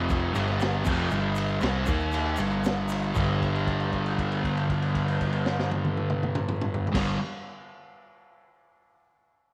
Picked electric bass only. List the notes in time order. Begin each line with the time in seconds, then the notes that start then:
Already playing: F1
0.36 G1
0.86 F1
1.11 G1
1.63 C2
1.88 D#2
2.39 G1
3.16 G1
6.94 G1